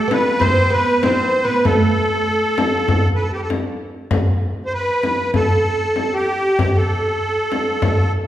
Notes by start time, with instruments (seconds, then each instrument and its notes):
Already playing: accordion A4
0.08 oud B3, frame drum
0.12 accordion B4
0.40 oud C4, accordion C5, frame drum
0.70 oud B3, accordion B4
1.02 oud C4, accordion C5, frame drum
1.43 oud B3, accordion B4
1.65 oud A3, accordion A4, frame drum
2.58 frame drum
2.88 frame drum
3.15 accordion B4
3.22 accordion A4
3.32 accordion G4
3.42 accordion A4
3.50 frame drum
4.11 frame drum
4.66 accordion C5
4.73 accordion B4
5.03 frame drum
5.34 accordion A4, frame drum
5.96 frame drum
6.14 accordion G4
6.59 frame drum
6.77 accordion A4
7.52 frame drum
7.82 frame drum